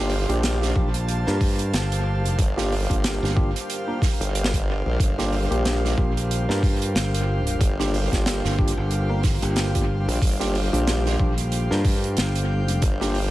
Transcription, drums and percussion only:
0.10 open hi-hat medium
0.30 closed hi-hat medium
0.43 snare loud
0.43 closed hi-hat medium
0.62 snare medium
0.76 kick loud
0.94 closed hi-hat medium
1.08 closed hi-hat medium
1.27 snare soft
1.41 kick loud
1.41 open hi-hat medium
1.59 closed hi-hat medium
1.74 snare loud
1.74 closed hi-hat medium
1.92 closed hi-hat medium
2.25 closed hi-hat medium
2.39 kick loud
2.39 closed hi-hat medium
2.58 snare medium
2.72 open hi-hat medium
2.90 kick medium
2.90 closed hi-hat medium
3.04 snare loud
3.04 closed hi-hat medium
3.24 snare soft
3.37 kick loud
3.56 closed hi-hat medium
3.70 closed hi-hat medium
4.02 kick loud
4.02 snare medium
4.02 open hi-hat medium
4.21 closed hi-hat medium
4.35 closed hi-hat medium
4.44 snare loud
4.53 kick medium
4.53 closed hi-hat medium
5.00 kick loud
5.00 closed hi-hat medium
5.19 snare soft
5.33 open hi-hat medium
5.52 closed hi-hat medium
5.65 snare loud
5.65 closed hi-hat medium
5.85 snare soft
5.98 kick loud
6.17 closed hi-hat medium
6.31 closed hi-hat medium
6.50 snare soft
6.63 kick loud
6.63 open hi-hat medium
6.82 closed hi-hat medium
6.96 snare loud
6.96 closed hi-hat medium
7.14 closed hi-hat medium
7.47 closed hi-hat medium
7.61 kick loud
7.61 closed hi-hat medium
7.80 snare medium
7.94 open hi-hat medium
8.12 kick medium
8.12 snare soft
8.12 closed hi-hat medium
8.26 snare loud
8.26 closed hi-hat medium
8.45 snare medium
8.59 kick loud
8.68 closed hi-hat medium
8.91 closed hi-hat medium
9.23 kick loud
9.23 snare medium
9.23 open hi-hat medium
9.42 closed hi-hat medium
9.56 snare loud
9.56 closed hi-hat medium
9.75 kick medium
9.75 closed hi-hat medium
10.09 closed hi-hat medium
10.11 closed hi-hat soft
10.13 closed hi-hat soft
10.15 closed hi-hat soft
10.17 closed hi-hat soft
10.19 closed hi-hat soft
10.21 kick loud
10.21 closed hi-hat soft
10.21 closed hi-hat medium
10.27 closed hi-hat medium
10.32 closed hi-hat medium
10.36 closed hi-hat soft
10.40 snare soft
10.40 closed hi-hat soft
10.45 closed hi-hat soft
10.48 closed hi-hat soft
10.52 closed hi-hat soft
10.52 open hi-hat medium
10.74 closed hi-hat medium
10.87 snare loud
10.87 closed hi-hat medium
11.06 snare medium
11.20 kick loud
11.38 closed hi-hat medium
11.52 closed hi-hat medium
11.71 snare soft
11.85 kick loud
11.85 open hi-hat medium
12.04 closed hi-hat medium
12.17 snare loud
12.17 closed hi-hat medium
12.35 closed hi-hat medium
12.68 closed hi-hat medium
12.82 kick loud
12.82 closed hi-hat medium
13.01 snare medium
13.15 open hi-hat medium

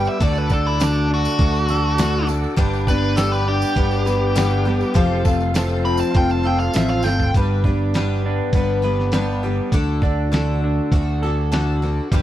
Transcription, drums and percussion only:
0.05 tambourine soft
0.20 kick loud
0.20 closed hi-hat medium
0.35 tambourine soft
0.50 kick medium
0.50 tambourine medium
0.80 snare loud
0.80 closed hi-hat medium
0.80 tambourine medium
0.95 tambourine soft
1.25 tambourine medium
1.39 kick loud
1.39 closed hi-hat medium
1.55 tambourine soft
1.69 tambourine medium
1.98 snare medium
1.98 closed hi-hat medium
1.98 tambourine medium
2.13 tambourine soft
2.29 tambourine medium
2.44 tambourine soft
2.57 kick loud
2.57 closed hi-hat medium
2.73 tambourine soft
2.87 kick medium
2.87 tambourine medium
3.17 snare loud
3.17 closed hi-hat medium
3.17 tambourine medium
3.33 tambourine soft
3.62 tambourine medium
3.76 kick medium
3.76 closed hi-hat medium
3.91 tambourine soft
4.07 tambourine medium
4.36 snare loud
4.36 closed hi-hat medium
4.36 tambourine medium
4.51 tambourine soft
4.81 tambourine soft
4.95 kick loud
4.95 closed hi-hat medium
5.25 kick medium
5.25 tambourine medium
5.40 tambourine soft
5.55 snare loud
5.55 closed hi-hat medium
5.55 tambourine medium
5.69 tambourine soft
5.85 tambourine soft
5.97 tambourine medium
6.14 kick loud
6.14 closed hi-hat medium
6.30 tambourine soft
6.60 tambourine soft
6.73 snare loud
6.73 closed hi-hat medium
6.73 tambourine medium
6.88 tambourine soft
7.03 snare medium
7.03 tambourine medium
7.20 floor tom medium
7.20 tambourine soft
7.34 kick medium
7.34 closed hi-hat medium
7.64 kick medium
7.94 snare medium
7.94 closed hi-hat medium
8.53 kick medium
8.53 closed hi-hat medium
8.99 snare soft
9.12 snare medium
9.12 closed hi-hat medium
9.72 kick loud
9.72 closed hi-hat medium
10.02 kick medium
10.33 snare loud
10.33 closed hi-hat medium
10.92 kick medium
10.92 closed hi-hat medium
11.52 snare loud
11.52 closed hi-hat medium
12.12 kick loud
12.12 closed hi-hat medium

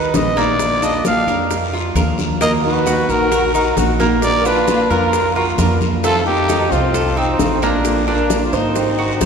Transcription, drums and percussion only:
0.14 high bongo soft
0.14 low bongo medium
0.14 high conga medium
0.14 short guiro medium
0.14 maracas medium
0.36 high bongo soft
0.36 short guiro medium
0.36 maracas soft
0.59 high bongo medium
0.59 high conga soft
0.59 long guiro medium
0.59 maracas medium
0.82 high bongo soft
0.82 high conga soft
0.82 maracas medium
1.05 high bongo medium
1.05 high conga medium
1.05 short guiro medium
1.05 maracas medium
1.27 high conga soft
1.27 short guiro medium
1.27 maracas soft
1.50 high bongo medium
1.50 high conga soft
1.50 long guiro medium
1.50 maracas medium
1.73 high bongo soft
1.73 high conga soft
1.95 high bongo soft
1.95 low bongo medium
1.95 high conga medium
1.95 short guiro medium
1.95 maracas medium
2.18 high bongo soft
2.18 high conga medium
2.18 short guiro medium
2.18 maracas soft
2.41 high bongo medium
2.41 high conga soft
2.41 long guiro medium
2.41 maracas medium
2.64 high bongo soft
2.64 high conga soft
2.86 high bongo soft
2.86 high conga medium
2.86 short guiro medium
2.86 maracas medium
3.09 high conga soft
3.09 short guiro medium
3.09 maracas soft
3.32 high bongo medium
3.32 high conga soft
3.32 long guiro medium
3.32 maracas medium
3.54 high bongo soft
3.54 high conga soft
3.54 maracas medium
3.77 high bongo soft
3.77 low bongo medium
3.77 high conga medium
3.77 short guiro medium
3.77 maracas medium
3.99 high bongo soft
3.99 high conga medium
3.99 short guiro medium
3.99 maracas soft
4.22 high bongo medium
4.22 high conga soft
4.22 long guiro medium
4.22 maracas medium
4.45 high bongo soft
4.45 high conga soft
4.45 maracas medium
4.68 high bongo medium
4.68 high conga medium
4.68 short guiro medium
4.68 maracas medium
4.90 high conga soft
4.90 short guiro medium
4.90 maracas soft
5.13 high bongo medium
5.13 high conga soft
5.13 long guiro medium
5.13 maracas medium
5.36 high bongo soft
5.36 high conga soft
5.58 high bongo soft
5.58 low bongo medium
5.58 high conga medium
5.58 short guiro medium
5.58 maracas medium
5.81 high bongo soft
5.81 high conga medium
5.81 short guiro medium
5.81 maracas soft
6.03 high bongo medium
6.03 high conga soft
6.03 long guiro medium
6.03 maracas medium
6.26 high bongo soft
6.26 high conga soft
6.49 high bongo medium
6.49 high conga medium
6.49 short guiro medium
6.49 maracas medium
6.72 high conga soft
6.72 short guiro medium
6.72 maracas soft
6.94 high bongo medium
6.94 high conga soft
6.94 long guiro medium
6.94 maracas medium
7.17 high bongo soft
7.17 high conga soft
7.39 high bongo soft
7.39 low bongo medium
7.39 high conga medium
7.39 short guiro medium
7.39 maracas medium
7.62 high bongo soft
7.62 short guiro medium
7.62 maracas soft
7.85 high bongo medium
7.85 high conga soft
7.85 long guiro medium
7.85 maracas medium
8.08 high bongo soft
8.08 high conga soft
8.30 high bongo medium
8.30 high conga medium
8.30 short guiro medium
8.30 maracas medium
8.53 high conga soft
8.53 short guiro medium
8.53 maracas soft
8.75 high bongo medium
8.75 high conga soft
8.75 long guiro medium
8.75 maracas medium
8.98 high bongo soft
8.98 high conga soft
9.21 high bongo medium
9.21 high conga medium
9.21 short guiro medium
9.21 maracas medium

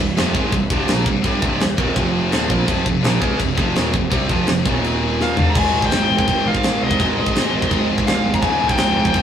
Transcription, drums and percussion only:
0.17 snare loud
0.17 china medium
0.35 kick loud
0.52 kick medium
0.52 china medium
0.70 kick loud
0.88 snare loud
0.88 china medium
1.06 kick loud
1.24 kick loud
1.24 china medium
1.42 kick loud
1.60 snare loud
1.60 china medium
1.78 kick loud
1.96 kick loud
1.96 china medium
2.32 snare loud
2.32 china medium
2.50 kick loud
2.68 kick loud
2.68 china medium
2.86 kick medium
3.04 snare loud
3.04 china medium
3.22 kick loud
3.40 kick loud
3.40 china medium
3.58 kick loud
3.75 snare loud
3.75 china medium
3.94 kick medium
4.12 kick loud
4.12 china medium
4.29 kick loud
4.47 snare loud
4.47 china medium
4.66 kick loud
4.84 china medium
5.21 snare medium
5.37 floor tom loud
5.55 kick loud
5.55 crash loud
5.55 china medium
5.82 kick medium
5.91 snare loud
5.91 china medium
6.19 kick medium
6.28 kick loud
6.28 china medium
6.55 kick medium
6.63 snare loud
6.63 china medium
6.91 kick medium
7.00 kick loud
7.00 china medium
7.26 kick medium
7.36 snare loud
7.36 china medium
7.62 kick medium
7.71 kick loud
7.71 china medium
7.98 kick medium
8.07 snare loud
8.07 china medium
8.34 kick loud
8.42 kick loud
8.42 china medium
8.69 kick medium
8.78 snare loud
8.78 china medium
9.05 kick medium
9.14 kick medium
9.14 china medium

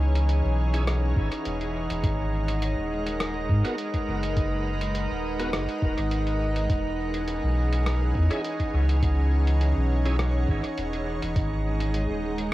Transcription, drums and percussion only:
0.15 closed hi-hat soft
0.29 closed hi-hat soft
0.74 closed hi-hat soft
0.87 cross-stick medium
0.87 closed hi-hat medium
1.16 kick loud
1.32 closed hi-hat soft
1.45 closed hi-hat soft
1.61 closed hi-hat soft
1.90 closed hi-hat soft
2.04 kick loud
2.04 closed hi-hat medium
2.48 closed hi-hat soft
2.62 closed hi-hat soft
3.06 closed hi-hat soft
3.20 cross-stick medium
3.20 closed hi-hat soft
3.49 kick loud
3.65 closed hi-hat soft
3.78 closed hi-hat medium
3.94 kick medium
3.94 closed hi-hat soft
4.23 closed hi-hat soft
4.37 kick loud
4.37 closed hi-hat soft
4.81 closed hi-hat soft
4.95 closed hi-hat soft
5.39 closed hi-hat soft
5.53 cross-stick medium
5.53 closed hi-hat soft
5.69 closed hi-hat soft
5.82 kick loud
5.98 closed hi-hat soft
6.11 closed hi-hat medium
6.27 closed hi-hat soft
6.56 closed hi-hat soft
6.70 kick loud
6.70 closed hi-hat soft
7.14 closed hi-hat soft
7.28 closed hi-hat soft
7.73 closed hi-hat soft
7.86 cross-stick medium
7.86 closed hi-hat soft
8.15 kick loud
8.31 closed hi-hat soft
8.44 closed hi-hat soft
8.60 kick medium
8.60 closed hi-hat soft
8.89 closed hi-hat soft
9.03 kick loud
9.03 closed hi-hat soft
9.47 closed hi-hat soft
9.61 closed hi-hat soft
10.05 closed hi-hat soft
10.19 cross-stick medium
10.19 closed hi-hat soft
10.48 kick loud
10.64 closed hi-hat soft
10.78 closed hi-hat soft
10.93 closed hi-hat soft
11.22 closed hi-hat soft
11.36 kick loud
11.36 closed hi-hat soft
11.80 closed hi-hat soft
11.94 closed hi-hat soft
12.38 closed hi-hat soft

